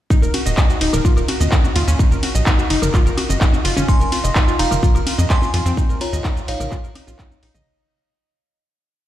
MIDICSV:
0, 0, Header, 1, 5, 480
1, 0, Start_track
1, 0, Tempo, 472441
1, 106, Time_signature, 4, 2, 24, 8
1, 9218, End_track
2, 0, Start_track
2, 0, Title_t, "Synth bell"
2, 0, Program_c, 0, 98
2, 3947, Note_on_c, 0, 80, 79
2, 3947, Note_on_c, 0, 84, 103
2, 4571, Note_off_c, 0, 80, 0
2, 4571, Note_off_c, 0, 84, 0
2, 4666, Note_on_c, 0, 77, 78
2, 4667, Note_on_c, 0, 82, 93
2, 5290, Note_off_c, 0, 77, 0
2, 5291, Note_off_c, 0, 82, 0
2, 5388, Note_on_c, 0, 80, 77
2, 5388, Note_on_c, 0, 84, 95
2, 6011, Note_off_c, 0, 80, 0
2, 6011, Note_off_c, 0, 84, 0
2, 6107, Note_on_c, 0, 73, 78
2, 6107, Note_on_c, 0, 82, 89
2, 6539, Note_off_c, 0, 73, 0
2, 6539, Note_off_c, 0, 82, 0
2, 6586, Note_on_c, 0, 73, 77
2, 6586, Note_on_c, 0, 77, 95
2, 7690, Note_off_c, 0, 73, 0
2, 7690, Note_off_c, 0, 77, 0
2, 9218, End_track
3, 0, Start_track
3, 0, Title_t, "Synth pluck"
3, 0, Program_c, 1, 84
3, 105, Note_on_c, 1, 63, 86
3, 181, Note_off_c, 1, 63, 0
3, 226, Note_on_c, 1, 70, 80
3, 300, Note_off_c, 1, 70, 0
3, 345, Note_on_c, 1, 66, 79
3, 420, Note_off_c, 1, 66, 0
3, 466, Note_on_c, 1, 75, 77
3, 540, Note_off_c, 1, 75, 0
3, 585, Note_on_c, 1, 63, 81
3, 660, Note_off_c, 1, 63, 0
3, 706, Note_on_c, 1, 66, 79
3, 751, Note_off_c, 1, 66, 0
3, 825, Note_on_c, 1, 63, 99
3, 870, Note_off_c, 1, 63, 0
3, 946, Note_on_c, 1, 70, 78
3, 1058, Note_off_c, 1, 70, 0
3, 1065, Note_on_c, 1, 65, 85
3, 1140, Note_off_c, 1, 65, 0
3, 1186, Note_on_c, 1, 70, 78
3, 1260, Note_off_c, 1, 70, 0
3, 1305, Note_on_c, 1, 66, 79
3, 1380, Note_off_c, 1, 66, 0
3, 1426, Note_on_c, 1, 75, 78
3, 1501, Note_off_c, 1, 75, 0
3, 1545, Note_on_c, 1, 63, 83
3, 1620, Note_off_c, 1, 63, 0
3, 1666, Note_on_c, 1, 66, 80
3, 1711, Note_off_c, 1, 66, 0
3, 1785, Note_on_c, 1, 65, 102
3, 1898, Note_off_c, 1, 65, 0
3, 1905, Note_on_c, 1, 61, 104
3, 2017, Note_off_c, 1, 61, 0
3, 2024, Note_on_c, 1, 63, 83
3, 2100, Note_off_c, 1, 63, 0
3, 2145, Note_on_c, 1, 70, 77
3, 2220, Note_off_c, 1, 70, 0
3, 2265, Note_on_c, 1, 66, 79
3, 2340, Note_off_c, 1, 66, 0
3, 2386, Note_on_c, 1, 75, 78
3, 2460, Note_off_c, 1, 75, 0
3, 2506, Note_on_c, 1, 63, 86
3, 2581, Note_off_c, 1, 63, 0
3, 2626, Note_on_c, 1, 66, 77
3, 2671, Note_off_c, 1, 66, 0
3, 2746, Note_on_c, 1, 63, 101
3, 2791, Note_off_c, 1, 63, 0
3, 2867, Note_on_c, 1, 70, 80
3, 2978, Note_off_c, 1, 70, 0
3, 2987, Note_on_c, 1, 65, 85
3, 3061, Note_off_c, 1, 65, 0
3, 3106, Note_on_c, 1, 70, 78
3, 3181, Note_off_c, 1, 70, 0
3, 3226, Note_on_c, 1, 66, 79
3, 3301, Note_off_c, 1, 66, 0
3, 3346, Note_on_c, 1, 75, 81
3, 3421, Note_off_c, 1, 75, 0
3, 3465, Note_on_c, 1, 63, 83
3, 3540, Note_off_c, 1, 63, 0
3, 3585, Note_on_c, 1, 66, 79
3, 3630, Note_off_c, 1, 66, 0
3, 3705, Note_on_c, 1, 65, 106
3, 3818, Note_off_c, 1, 65, 0
3, 3827, Note_on_c, 1, 61, 104
3, 3938, Note_off_c, 1, 61, 0
3, 3946, Note_on_c, 1, 63, 85
3, 4021, Note_off_c, 1, 63, 0
3, 4066, Note_on_c, 1, 70, 76
3, 4141, Note_off_c, 1, 70, 0
3, 4186, Note_on_c, 1, 65, 79
3, 4261, Note_off_c, 1, 65, 0
3, 4306, Note_on_c, 1, 75, 79
3, 4381, Note_off_c, 1, 75, 0
3, 4425, Note_on_c, 1, 63, 84
3, 4500, Note_off_c, 1, 63, 0
3, 4547, Note_on_c, 1, 65, 80
3, 4591, Note_off_c, 1, 65, 0
3, 4665, Note_on_c, 1, 63, 101
3, 4710, Note_off_c, 1, 63, 0
3, 4786, Note_on_c, 1, 70, 75
3, 4898, Note_off_c, 1, 70, 0
3, 4906, Note_on_c, 1, 65, 85
3, 4981, Note_off_c, 1, 65, 0
3, 5026, Note_on_c, 1, 70, 77
3, 5100, Note_off_c, 1, 70, 0
3, 5146, Note_on_c, 1, 65, 80
3, 5221, Note_off_c, 1, 65, 0
3, 5265, Note_on_c, 1, 75, 79
3, 5340, Note_off_c, 1, 75, 0
3, 5384, Note_on_c, 1, 63, 82
3, 5460, Note_off_c, 1, 63, 0
3, 5505, Note_on_c, 1, 65, 78
3, 5551, Note_off_c, 1, 65, 0
3, 5626, Note_on_c, 1, 65, 103
3, 5738, Note_off_c, 1, 65, 0
3, 5747, Note_on_c, 1, 60, 106
3, 5858, Note_off_c, 1, 60, 0
3, 5866, Note_on_c, 1, 63, 85
3, 5941, Note_off_c, 1, 63, 0
3, 5987, Note_on_c, 1, 70, 78
3, 6061, Note_off_c, 1, 70, 0
3, 6106, Note_on_c, 1, 65, 80
3, 6181, Note_off_c, 1, 65, 0
3, 6227, Note_on_c, 1, 75, 79
3, 6301, Note_off_c, 1, 75, 0
3, 6347, Note_on_c, 1, 63, 85
3, 6421, Note_off_c, 1, 63, 0
3, 6467, Note_on_c, 1, 65, 82
3, 6511, Note_off_c, 1, 65, 0
3, 6586, Note_on_c, 1, 63, 103
3, 6631, Note_off_c, 1, 63, 0
3, 6706, Note_on_c, 1, 70, 77
3, 6818, Note_off_c, 1, 70, 0
3, 6826, Note_on_c, 1, 65, 83
3, 6901, Note_off_c, 1, 65, 0
3, 6946, Note_on_c, 1, 70, 77
3, 7020, Note_off_c, 1, 70, 0
3, 7065, Note_on_c, 1, 63, 80
3, 7141, Note_off_c, 1, 63, 0
3, 7186, Note_on_c, 1, 65, 81
3, 7298, Note_off_c, 1, 65, 0
3, 7306, Note_on_c, 1, 63, 102
3, 7414, Note_off_c, 1, 63, 0
3, 7426, Note_on_c, 1, 63, 81
3, 7533, Note_off_c, 1, 63, 0
3, 7545, Note_on_c, 1, 63, 103
3, 7620, Note_off_c, 1, 63, 0
3, 7666, Note_on_c, 1, 75, 107
3, 7778, Note_off_c, 1, 75, 0
3, 9218, End_track
4, 0, Start_track
4, 0, Title_t, "Analog synth bass"
4, 0, Program_c, 2, 38
4, 226, Note_on_c, 2, 27, 76
4, 304, Note_off_c, 2, 27, 0
4, 466, Note_on_c, 2, 27, 83
4, 544, Note_off_c, 2, 27, 0
4, 825, Note_on_c, 2, 27, 93
4, 904, Note_off_c, 2, 27, 0
4, 945, Note_on_c, 2, 27, 83
4, 1024, Note_off_c, 2, 27, 0
4, 1186, Note_on_c, 2, 27, 77
4, 1264, Note_off_c, 2, 27, 0
4, 1426, Note_on_c, 2, 39, 82
4, 1504, Note_off_c, 2, 39, 0
4, 1785, Note_on_c, 2, 39, 96
4, 1864, Note_off_c, 2, 39, 0
4, 1905, Note_on_c, 2, 39, 78
4, 1984, Note_off_c, 2, 39, 0
4, 2146, Note_on_c, 2, 30, 76
4, 2224, Note_off_c, 2, 30, 0
4, 2386, Note_on_c, 2, 34, 81
4, 2464, Note_off_c, 2, 34, 0
4, 2745, Note_on_c, 2, 30, 94
4, 2824, Note_off_c, 2, 30, 0
4, 2866, Note_on_c, 2, 30, 84
4, 2944, Note_off_c, 2, 30, 0
4, 3107, Note_on_c, 2, 30, 77
4, 3185, Note_off_c, 2, 30, 0
4, 3346, Note_on_c, 2, 30, 84
4, 3424, Note_off_c, 2, 30, 0
4, 3707, Note_on_c, 2, 30, 97
4, 3785, Note_off_c, 2, 30, 0
4, 3826, Note_on_c, 2, 30, 79
4, 3905, Note_off_c, 2, 30, 0
4, 4067, Note_on_c, 2, 29, 78
4, 4145, Note_off_c, 2, 29, 0
4, 4306, Note_on_c, 2, 29, 86
4, 4385, Note_off_c, 2, 29, 0
4, 4666, Note_on_c, 2, 29, 96
4, 4745, Note_off_c, 2, 29, 0
4, 4786, Note_on_c, 2, 29, 82
4, 4865, Note_off_c, 2, 29, 0
4, 5026, Note_on_c, 2, 29, 80
4, 5104, Note_off_c, 2, 29, 0
4, 5266, Note_on_c, 2, 41, 82
4, 5345, Note_off_c, 2, 41, 0
4, 5625, Note_on_c, 2, 41, 101
4, 5704, Note_off_c, 2, 41, 0
4, 5746, Note_on_c, 2, 41, 80
4, 5824, Note_off_c, 2, 41, 0
4, 5986, Note_on_c, 2, 34, 77
4, 6064, Note_off_c, 2, 34, 0
4, 6226, Note_on_c, 2, 39, 84
4, 6304, Note_off_c, 2, 39, 0
4, 6585, Note_on_c, 2, 34, 90
4, 6664, Note_off_c, 2, 34, 0
4, 6705, Note_on_c, 2, 34, 83
4, 6784, Note_off_c, 2, 34, 0
4, 6946, Note_on_c, 2, 34, 77
4, 7024, Note_off_c, 2, 34, 0
4, 7186, Note_on_c, 2, 34, 83
4, 7264, Note_off_c, 2, 34, 0
4, 7546, Note_on_c, 2, 34, 99
4, 7624, Note_off_c, 2, 34, 0
4, 7666, Note_on_c, 2, 34, 82
4, 7744, Note_off_c, 2, 34, 0
4, 9218, End_track
5, 0, Start_track
5, 0, Title_t, "Drums"
5, 106, Note_on_c, 9, 36, 122
5, 112, Note_on_c, 9, 69, 59
5, 207, Note_off_c, 9, 36, 0
5, 213, Note_off_c, 9, 69, 0
5, 232, Note_on_c, 9, 69, 36
5, 334, Note_off_c, 9, 69, 0
5, 345, Note_on_c, 9, 46, 107
5, 345, Note_on_c, 9, 51, 78
5, 346, Note_on_c, 9, 63, 86
5, 447, Note_off_c, 9, 46, 0
5, 447, Note_off_c, 9, 51, 0
5, 447, Note_off_c, 9, 63, 0
5, 471, Note_on_c, 9, 69, 69
5, 573, Note_off_c, 9, 69, 0
5, 580, Note_on_c, 9, 39, 124
5, 585, Note_on_c, 9, 36, 121
5, 590, Note_on_c, 9, 69, 58
5, 681, Note_off_c, 9, 39, 0
5, 687, Note_off_c, 9, 36, 0
5, 691, Note_off_c, 9, 69, 0
5, 711, Note_on_c, 9, 69, 34
5, 812, Note_off_c, 9, 69, 0
5, 824, Note_on_c, 9, 46, 105
5, 824, Note_on_c, 9, 51, 80
5, 925, Note_off_c, 9, 46, 0
5, 925, Note_off_c, 9, 51, 0
5, 946, Note_on_c, 9, 47, 80
5, 946, Note_on_c, 9, 76, 71
5, 951, Note_on_c, 9, 69, 72
5, 1047, Note_off_c, 9, 47, 0
5, 1047, Note_off_c, 9, 76, 0
5, 1052, Note_off_c, 9, 69, 0
5, 1065, Note_on_c, 9, 36, 114
5, 1071, Note_on_c, 9, 69, 60
5, 1167, Note_off_c, 9, 36, 0
5, 1173, Note_off_c, 9, 69, 0
5, 1185, Note_on_c, 9, 76, 68
5, 1191, Note_on_c, 9, 69, 34
5, 1287, Note_off_c, 9, 76, 0
5, 1292, Note_off_c, 9, 69, 0
5, 1304, Note_on_c, 9, 63, 98
5, 1305, Note_on_c, 9, 46, 111
5, 1305, Note_on_c, 9, 51, 82
5, 1406, Note_off_c, 9, 63, 0
5, 1407, Note_off_c, 9, 46, 0
5, 1407, Note_off_c, 9, 51, 0
5, 1426, Note_on_c, 9, 63, 70
5, 1431, Note_on_c, 9, 69, 70
5, 1528, Note_off_c, 9, 63, 0
5, 1533, Note_off_c, 9, 69, 0
5, 1540, Note_on_c, 9, 39, 126
5, 1545, Note_on_c, 9, 36, 125
5, 1551, Note_on_c, 9, 69, 58
5, 1642, Note_off_c, 9, 39, 0
5, 1647, Note_off_c, 9, 36, 0
5, 1652, Note_off_c, 9, 69, 0
5, 1666, Note_on_c, 9, 63, 97
5, 1671, Note_on_c, 9, 69, 36
5, 1767, Note_off_c, 9, 63, 0
5, 1773, Note_off_c, 9, 69, 0
5, 1784, Note_on_c, 9, 46, 109
5, 1784, Note_on_c, 9, 51, 80
5, 1886, Note_off_c, 9, 46, 0
5, 1886, Note_off_c, 9, 51, 0
5, 1911, Note_on_c, 9, 69, 72
5, 2012, Note_off_c, 9, 69, 0
5, 2026, Note_on_c, 9, 36, 127
5, 2031, Note_on_c, 9, 69, 57
5, 2127, Note_off_c, 9, 36, 0
5, 2132, Note_off_c, 9, 69, 0
5, 2151, Note_on_c, 9, 69, 35
5, 2253, Note_off_c, 9, 69, 0
5, 2264, Note_on_c, 9, 46, 108
5, 2264, Note_on_c, 9, 51, 76
5, 2265, Note_on_c, 9, 63, 83
5, 2366, Note_off_c, 9, 46, 0
5, 2366, Note_off_c, 9, 51, 0
5, 2367, Note_off_c, 9, 63, 0
5, 2392, Note_on_c, 9, 69, 72
5, 2494, Note_off_c, 9, 69, 0
5, 2502, Note_on_c, 9, 39, 123
5, 2506, Note_on_c, 9, 36, 127
5, 2513, Note_on_c, 9, 69, 57
5, 2604, Note_off_c, 9, 39, 0
5, 2607, Note_off_c, 9, 36, 0
5, 2614, Note_off_c, 9, 69, 0
5, 2633, Note_on_c, 9, 69, 34
5, 2734, Note_off_c, 9, 69, 0
5, 2746, Note_on_c, 9, 46, 107
5, 2746, Note_on_c, 9, 51, 77
5, 2847, Note_off_c, 9, 46, 0
5, 2847, Note_off_c, 9, 51, 0
5, 2866, Note_on_c, 9, 47, 81
5, 2866, Note_on_c, 9, 76, 70
5, 2873, Note_on_c, 9, 69, 71
5, 2968, Note_off_c, 9, 47, 0
5, 2968, Note_off_c, 9, 76, 0
5, 2975, Note_off_c, 9, 69, 0
5, 2983, Note_on_c, 9, 39, 66
5, 2986, Note_on_c, 9, 36, 123
5, 2994, Note_on_c, 9, 69, 57
5, 3085, Note_off_c, 9, 39, 0
5, 3088, Note_off_c, 9, 36, 0
5, 3095, Note_off_c, 9, 69, 0
5, 3114, Note_on_c, 9, 69, 34
5, 3216, Note_off_c, 9, 69, 0
5, 3225, Note_on_c, 9, 63, 95
5, 3225, Note_on_c, 9, 76, 68
5, 3227, Note_on_c, 9, 46, 114
5, 3227, Note_on_c, 9, 51, 78
5, 3327, Note_off_c, 9, 63, 0
5, 3327, Note_off_c, 9, 76, 0
5, 3329, Note_off_c, 9, 46, 0
5, 3329, Note_off_c, 9, 51, 0
5, 3346, Note_on_c, 9, 63, 67
5, 3354, Note_on_c, 9, 69, 69
5, 3447, Note_off_c, 9, 63, 0
5, 3456, Note_off_c, 9, 69, 0
5, 3464, Note_on_c, 9, 39, 127
5, 3465, Note_on_c, 9, 76, 69
5, 3466, Note_on_c, 9, 36, 127
5, 3474, Note_on_c, 9, 69, 58
5, 3565, Note_off_c, 9, 39, 0
5, 3567, Note_off_c, 9, 76, 0
5, 3568, Note_off_c, 9, 36, 0
5, 3576, Note_off_c, 9, 69, 0
5, 3586, Note_on_c, 9, 63, 95
5, 3594, Note_on_c, 9, 69, 35
5, 3687, Note_off_c, 9, 63, 0
5, 3696, Note_off_c, 9, 69, 0
5, 3708, Note_on_c, 9, 46, 112
5, 3708, Note_on_c, 9, 51, 75
5, 3810, Note_off_c, 9, 46, 0
5, 3810, Note_off_c, 9, 51, 0
5, 3826, Note_on_c, 9, 47, 85
5, 3834, Note_on_c, 9, 69, 69
5, 3927, Note_off_c, 9, 47, 0
5, 3936, Note_off_c, 9, 69, 0
5, 3947, Note_on_c, 9, 36, 127
5, 3954, Note_on_c, 9, 69, 56
5, 4048, Note_off_c, 9, 36, 0
5, 4056, Note_off_c, 9, 69, 0
5, 4075, Note_on_c, 9, 69, 35
5, 4176, Note_off_c, 9, 69, 0
5, 4186, Note_on_c, 9, 63, 83
5, 4188, Note_on_c, 9, 46, 114
5, 4188, Note_on_c, 9, 51, 74
5, 4288, Note_off_c, 9, 63, 0
5, 4289, Note_off_c, 9, 46, 0
5, 4289, Note_off_c, 9, 51, 0
5, 4314, Note_on_c, 9, 69, 69
5, 4416, Note_off_c, 9, 69, 0
5, 4423, Note_on_c, 9, 39, 122
5, 4426, Note_on_c, 9, 36, 127
5, 4434, Note_on_c, 9, 69, 56
5, 4525, Note_off_c, 9, 39, 0
5, 4528, Note_off_c, 9, 36, 0
5, 4535, Note_off_c, 9, 69, 0
5, 4554, Note_on_c, 9, 69, 33
5, 4656, Note_off_c, 9, 69, 0
5, 4667, Note_on_c, 9, 46, 114
5, 4667, Note_on_c, 9, 51, 77
5, 4769, Note_off_c, 9, 46, 0
5, 4769, Note_off_c, 9, 51, 0
5, 4787, Note_on_c, 9, 47, 84
5, 4787, Note_on_c, 9, 76, 67
5, 4795, Note_on_c, 9, 69, 67
5, 4889, Note_off_c, 9, 47, 0
5, 4889, Note_off_c, 9, 76, 0
5, 4897, Note_off_c, 9, 69, 0
5, 4906, Note_on_c, 9, 36, 125
5, 4915, Note_on_c, 9, 69, 56
5, 5008, Note_off_c, 9, 36, 0
5, 5016, Note_off_c, 9, 69, 0
5, 5027, Note_on_c, 9, 76, 68
5, 5035, Note_on_c, 9, 69, 33
5, 5129, Note_off_c, 9, 76, 0
5, 5137, Note_off_c, 9, 69, 0
5, 5147, Note_on_c, 9, 63, 93
5, 5148, Note_on_c, 9, 46, 118
5, 5148, Note_on_c, 9, 51, 79
5, 5248, Note_off_c, 9, 63, 0
5, 5250, Note_off_c, 9, 46, 0
5, 5250, Note_off_c, 9, 51, 0
5, 5267, Note_on_c, 9, 63, 67
5, 5274, Note_on_c, 9, 69, 66
5, 5369, Note_off_c, 9, 63, 0
5, 5376, Note_off_c, 9, 69, 0
5, 5383, Note_on_c, 9, 39, 124
5, 5386, Note_on_c, 9, 36, 127
5, 5394, Note_on_c, 9, 69, 56
5, 5485, Note_off_c, 9, 39, 0
5, 5488, Note_off_c, 9, 36, 0
5, 5495, Note_off_c, 9, 69, 0
5, 5507, Note_on_c, 9, 63, 94
5, 5515, Note_on_c, 9, 69, 34
5, 5609, Note_off_c, 9, 63, 0
5, 5616, Note_off_c, 9, 69, 0
5, 5627, Note_on_c, 9, 46, 112
5, 5627, Note_on_c, 9, 51, 76
5, 5728, Note_off_c, 9, 46, 0
5, 5728, Note_off_c, 9, 51, 0
5, 5753, Note_on_c, 9, 69, 68
5, 5854, Note_off_c, 9, 69, 0
5, 5866, Note_on_c, 9, 36, 127
5, 5873, Note_on_c, 9, 69, 55
5, 5968, Note_off_c, 9, 36, 0
5, 5974, Note_off_c, 9, 69, 0
5, 5993, Note_on_c, 9, 69, 33
5, 6095, Note_off_c, 9, 69, 0
5, 6106, Note_on_c, 9, 46, 112
5, 6106, Note_on_c, 9, 51, 78
5, 6107, Note_on_c, 9, 63, 82
5, 6207, Note_off_c, 9, 46, 0
5, 6207, Note_off_c, 9, 51, 0
5, 6208, Note_off_c, 9, 63, 0
5, 6232, Note_on_c, 9, 69, 66
5, 6334, Note_off_c, 9, 69, 0
5, 6342, Note_on_c, 9, 39, 121
5, 6346, Note_on_c, 9, 36, 127
5, 6352, Note_on_c, 9, 69, 55
5, 6443, Note_off_c, 9, 39, 0
5, 6448, Note_off_c, 9, 36, 0
5, 6453, Note_off_c, 9, 69, 0
5, 6472, Note_on_c, 9, 69, 33
5, 6574, Note_off_c, 9, 69, 0
5, 6586, Note_on_c, 9, 46, 113
5, 6586, Note_on_c, 9, 51, 79
5, 6687, Note_off_c, 9, 46, 0
5, 6687, Note_off_c, 9, 51, 0
5, 6707, Note_on_c, 9, 47, 81
5, 6707, Note_on_c, 9, 76, 64
5, 6712, Note_on_c, 9, 69, 68
5, 6809, Note_off_c, 9, 47, 0
5, 6809, Note_off_c, 9, 76, 0
5, 6814, Note_off_c, 9, 69, 0
5, 6822, Note_on_c, 9, 39, 63
5, 6826, Note_on_c, 9, 36, 124
5, 6832, Note_on_c, 9, 69, 56
5, 6923, Note_off_c, 9, 39, 0
5, 6927, Note_off_c, 9, 36, 0
5, 6933, Note_off_c, 9, 69, 0
5, 6952, Note_on_c, 9, 69, 33
5, 7054, Note_off_c, 9, 69, 0
5, 7066, Note_on_c, 9, 46, 118
5, 7066, Note_on_c, 9, 51, 78
5, 7066, Note_on_c, 9, 63, 92
5, 7066, Note_on_c, 9, 76, 69
5, 7168, Note_off_c, 9, 46, 0
5, 7168, Note_off_c, 9, 51, 0
5, 7168, Note_off_c, 9, 63, 0
5, 7168, Note_off_c, 9, 76, 0
5, 7186, Note_on_c, 9, 63, 64
5, 7193, Note_on_c, 9, 69, 68
5, 7288, Note_off_c, 9, 63, 0
5, 7295, Note_off_c, 9, 69, 0
5, 7303, Note_on_c, 9, 39, 121
5, 7306, Note_on_c, 9, 36, 126
5, 7306, Note_on_c, 9, 76, 65
5, 7313, Note_on_c, 9, 69, 55
5, 7404, Note_off_c, 9, 39, 0
5, 7407, Note_off_c, 9, 36, 0
5, 7408, Note_off_c, 9, 76, 0
5, 7414, Note_off_c, 9, 69, 0
5, 7426, Note_on_c, 9, 63, 88
5, 7433, Note_on_c, 9, 69, 33
5, 7527, Note_off_c, 9, 63, 0
5, 7535, Note_off_c, 9, 69, 0
5, 7546, Note_on_c, 9, 46, 108
5, 7546, Note_on_c, 9, 51, 77
5, 7648, Note_off_c, 9, 46, 0
5, 7648, Note_off_c, 9, 51, 0
5, 7667, Note_on_c, 9, 47, 87
5, 7672, Note_on_c, 9, 69, 67
5, 7768, Note_off_c, 9, 47, 0
5, 7774, Note_off_c, 9, 69, 0
5, 9218, End_track
0, 0, End_of_file